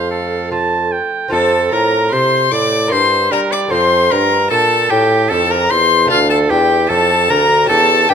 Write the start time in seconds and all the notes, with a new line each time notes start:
Already playing: F2 A3 F4 A4 F5
0.11 A4
0.51 A3 F4 A4 A5
0.92 G5
1.28 F2 C4 F4 A4 A5
1.32 F2 A4
1.72 A2 A#4 A#5
2.11 C3 C5 C6
2.51 A2 D5 D6
2.88 G2 A#3 E4 C6
2.92 G2 C5
3.32 G3 A#4 A#5
3.51 D5 D6
3.68 F2 A3 C4 F4 C5 C6
3.72 F2
4.11 G2 A#4 A#5
4.50 A#2 A4 A5
4.91 A2 G4 G5
5.30 F2 A4 A5
5.51 A#4 A#5
5.70 E2 C5 C6
6.05 A3 D4 F4
6.10 D2 F4 F5
6.30 A4 A5
6.50 E2 G4 G5
6.89 F2 A4 A5
7.30 D2 A#4 A#5
7.66 C#4 G4 A4 A5
7.70 E2
8.09 G2 G4 G5